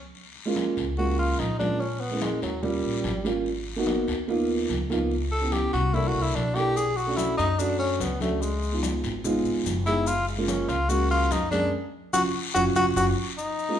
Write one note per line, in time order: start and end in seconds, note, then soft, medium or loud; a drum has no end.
0.15 high conga soft
0.15 long guiro medium
0.36 high conga soft
0.45 0.82 G#3 loud
0.45 0.82 A#3 medium
0.45 0.83 C#4 medium
0.45 0.83 F4 loud
0.56 high conga medium
0.56 short guiro medium
0.77 1.35 C#2 medium
0.77 high conga soft
0.77 short guiro medium
0.97 1.41 G#3 medium
0.97 1.41 A#3 medium
0.97 1.42 C#4 medium
0.97 1.42 F4 medium
0.97 1.17 F#4 medium
0.97 high conga soft
0.97 long guiro medium
1.19 1.40 F4 medium
1.39 2.36 A#1 medium
1.39 1.58 D#4 medium
1.39 high conga medium
1.39 short guiro medium
1.59 1.80 G#3 medium
1.59 1.80 A#3 medium
1.59 1.81 C#4 medium
1.59 1.81 D4 medium
1.59 1.81 F4 medium
1.59 high conga medium
1.59 short guiro medium
1.80 2.02 C#4 medium
1.80 high conga soft
1.80 long guiro medium
2.00 2.23 B3 medium
2.00 high conga soft
2.11 2.48 G#3 medium
2.11 2.48 A#3 medium
2.11 2.48 C#4 medium
2.11 2.48 E4 medium
2.21 2.42 G#3 medium
2.21 high conga loud
2.21 short guiro medium
2.42 2.81 D#2 medium
2.42 2.64 F#3 medium
2.42 high conga soft
2.42 short guiro medium
2.62 3.06 G3 medium
2.62 3.46 G3 medium
2.62 3.07 A#3 medium
2.62 3.07 C#4 medium
2.62 3.07 F4 medium
2.62 high conga soft
2.62 low conga medium
2.62 long guiro medium
2.83 3.03 A#1 medium
2.83 high conga soft
3.04 4.02 G#1 medium
3.04 high conga medium
3.04 short guiro medium
3.25 3.46 G3 loud
3.25 3.46 A#3 medium
3.25 3.46 C#4 medium
3.25 3.47 F4 loud
3.25 high conga soft
3.25 short guiro medium
3.46 high conga soft
3.46 long guiro medium
3.66 high conga soft
3.76 4.13 A#3 loud
3.76 4.13 B3 medium
3.76 4.13 D#4 loud
3.76 4.14 F#4 loud
3.86 high conga loud
3.86 short guiro medium
4.07 4.66 D#2 loud
4.07 high conga soft
4.07 short guiro medium
4.28 4.72 A#3 loud
4.28 4.72 B3 loud
4.28 4.72 D#4 medium
4.28 4.73 F4 loud
4.28 high conga soft
4.28 long guiro medium
4.49 high conga soft
4.69 5.67 C#2 medium
4.69 high conga medium
4.69 short guiro medium
4.89 5.11 A#3 medium
4.89 5.11 B3 medium
4.89 5.12 D#4 medium
4.89 5.12 F4 loud
4.89 high conga medium
4.89 short guiro medium
5.11 high conga soft
5.11 long guiro medium
5.31 5.54 A4 medium
5.31 high conga soft
5.41 5.78 B3 medium
5.41 5.78 C#4 medium
5.41 5.79 E4 medium
5.41 5.79 G4 medium
5.52 5.72 G4 medium
5.52 high conga medium
5.52 short guiro medium
5.73 6.12 C2 medium
5.73 5.96 F#4 loud
5.73 high conga soft
5.73 short guiro medium
5.93 6.37 A#3 medium
5.93 6.37 D4 medium
5.93 6.38 E4 medium
5.93 6.09 E4 medium
5.93 6.38 A4 medium
5.93 high conga soft
5.93 low conga medium
5.93 long guiro medium
6.08 6.23 F#4 loud
6.14 6.34 C2 medium
6.22 6.36 E4 medium
6.35 7.32 B1 medium
6.35 6.57 D4 medium
6.35 high conga medium
6.35 short guiro medium
6.55 6.76 A#3 medium
6.55 6.77 D4 medium
6.55 6.77 E4 medium
6.55 6.78 G4 loud
6.55 6.77 A4 medium
6.55 short guiro medium
6.76 6.98 G#4 medium
6.76 high conga soft
6.76 long guiro medium
6.76 maracas medium
6.96 7.18 F#4 medium
6.96 high conga soft
6.96 maracas soft
7.06 7.43 A3 medium
7.06 7.44 C#4 medium
7.06 7.44 D4 medium
7.06 7.44 F#4 loud
7.17 7.37 E4 medium
7.17 high conga loud
7.17 short guiro medium
7.17 maracas medium
7.37 7.97 F#2 loud
7.37 7.61 D#4 medium
7.37 high conga soft
7.37 short guiro medium
7.37 maracas soft
7.58 8.02 A3 medium
7.58 8.03 C#4 medium
7.58 7.78 D4 medium
7.58 8.03 D4 medium
7.58 8.03 F#4 medium
7.58 high conga soft
7.58 long guiro medium
7.58 maracas medium
7.79 8.03 C#4 loud
7.79 high conga soft
7.79 maracas soft
8.00 8.98 C#2 medium
8.00 8.21 B3 medium
8.00 high conga medium
8.00 short guiro medium
8.00 maracas medium
8.20 8.41 A3 medium
8.20 8.43 A3 medium
8.20 8.42 C#4 medium
8.20 8.42 D4 medium
8.20 8.42 F#4 medium
8.20 high conga medium
8.20 short guiro medium
8.20 maracas soft
8.42 8.83 G#3 medium
8.42 high conga soft
8.42 long guiro medium
8.42 maracas medium
8.63 high conga soft
8.63 maracas soft
8.72 9.09 G#3 medium
8.72 9.09 B3 medium
8.72 9.09 D#4 medium
8.72 9.10 F4 medium
8.83 high conga loud
8.83 short guiro medium
8.83 maracas medium
9.03 9.42 G#1 loud
9.03 high conga soft
9.03 short guiro medium
9.03 maracas soft
9.24 9.68 G#3 loud
9.24 9.68 B3 loud
9.24 9.69 D#4 medium
9.24 9.69 F4 loud
9.24 high conga soft
9.24 low conga medium
9.24 long guiro medium
9.24 maracas medium
9.45 9.64 G#1 medium
9.45 maracas soft
9.66 10.63 F#1 medium
9.66 high conga medium
9.66 short guiro medium
9.66 maracas medium
9.86 10.07 G#3 medium
9.86 10.07 B3 medium
9.86 10.08 D#4 medium
9.86 10.08 E4 loud
9.86 10.08 G#4 medium
9.86 short guiro medium
9.86 maracas soft
10.07 10.28 F4 loud
10.07 high conga soft
10.07 long guiro medium
10.07 maracas medium
10.28 10.44 G#3 medium
10.28 high conga soft
10.28 maracas soft
10.37 10.74 G#3 medium
10.37 10.74 A#3 medium
10.37 10.74 C#4 medium
10.37 10.75 F4 loud
10.48 10.70 C#4 medium
10.48 high conga loud
10.48 short guiro medium
10.48 maracas medium
10.68 11.27 C#2 loud
10.68 10.91 F4 loud
10.68 high conga soft
10.68 short guiro medium
10.68 maracas soft
10.88 11.32 G#3 medium
10.88 11.33 A#3 medium
10.88 11.33 C#4 medium
10.88 11.10 F#4 loud
10.88 11.33 F#4 loud
10.88 high conga soft
10.88 long guiro medium
10.88 maracas medium
11.11 11.33 F4 loud
11.11 maracas soft
11.31 11.69 F#2 medium
11.31 11.51 D#4 medium
11.31 high conga medium
11.31 short guiro medium
11.31 maracas medium
11.51 11.72 G#3 medium
11.51 11.72 A#3 medium
11.51 11.73 C#4 medium
11.51 11.71 D4 loud
11.51 11.73 G#4 medium
11.51 high conga medium
11.51 short guiro medium
11.51 maracas soft
12.13 12.29 F#1 medium
12.13 12.27 C#4 loud
12.13 12.27 F4 medium
12.13 12.23 F#4 loud
12.13 12.27 F#4 medium
12.13 high conga loud
12.13 long guiro loud
12.13 maracas loud
12.54 12.71 F#1 loud
12.54 12.69 C#4 loud
12.54 12.69 F4 loud
12.54 12.65 F#4 loud
12.54 12.69 F#4 loud
12.54 high conga loud
12.54 long guiro loud
12.54 maracas loud
12.76 12.91 F#1 loud
12.76 12.89 C#4 loud
12.76 12.89 F4 medium
12.76 12.86 F#4 loud
12.76 12.89 F#4 loud
12.76 high conga loud
12.76 long guiro loud
12.76 maracas loud
12.96 13.12 F#1 loud
12.96 13.10 C#4 loud
12.96 13.10 F4 loud
12.96 13.10 F#4 medium
12.96 13.07 F#4 loud
12.96 high conga loud
12.96 long guiro loud
12.96 maracas loud
13.37 13.79 D#4 loud
13.37 high conga soft
13.37 maracas medium
13.58 high conga soft
13.58 maracas soft
13.68 13.79 G#3 medium
13.68 13.79 A#3 medium
13.68 13.79 C#4 medium
13.68 13.79 F4 medium